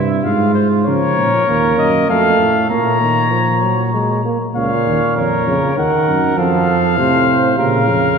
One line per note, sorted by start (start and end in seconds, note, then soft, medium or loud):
0.00 0.25 G2 medium
0.00 0.26 E4 medium
0.24 0.86 G#2 medium
0.24 0.86 F4 medium
0.24 0.53 F5 medium
0.55 0.69 C5 medium
0.86 1.01 C#3 medium
0.86 1.44 F3 medium
0.86 2.12 A#4 medium
0.86 1.74 C#5 medium
1.18 1.31 A#2 medium
1.47 1.80 D#2 medium
1.47 2.07 A#3 medium
1.78 2.10 F#2 medium
1.78 2.08 D#5 medium
2.08 2.38 F2 medium
2.08 2.68 A3 medium
2.08 2.70 A4 medium
2.08 2.69 F5 medium
2.39 2.69 A2 medium
2.70 4.22 A#2 medium
2.70 3.00 A#3 medium
2.70 4.22 C#5 medium
2.70 4.22 A#5 medium
3.00 3.33 D#3 medium
3.31 3.64 F3 medium
3.62 3.93 F#3 medium
3.94 4.24 G#3 medium
4.25 4.39 A#3 medium
4.55 4.69 C#2 medium
4.55 5.43 A#2 medium
4.55 5.13 C#5 medium
4.55 5.13 F5 medium
4.86 5.00 D#2 medium
5.16 5.46 F2 medium
5.16 5.76 A#4 medium
5.16 5.76 C#5 medium
5.46 5.60 F2 medium
5.46 5.76 C#3 medium
5.77 5.91 D#2 medium
5.77 6.36 D#3 medium
5.77 6.39 A#4 medium
5.77 6.37 F#5 medium
6.08 6.37 F#2 medium
6.37 6.97 F2 medium
6.37 6.99 F3 medium
6.37 6.97 A4 medium
6.37 7.57 F5 medium
6.97 7.58 A2 medium
6.97 7.57 C3 medium
6.97 7.28 C5 medium
7.28 7.58 C5 medium
7.58 7.90 A#2 medium
7.58 8.18 C#3 medium
7.58 8.18 A#4 medium
7.58 8.18 F5 medium
7.89 8.18 F2 medium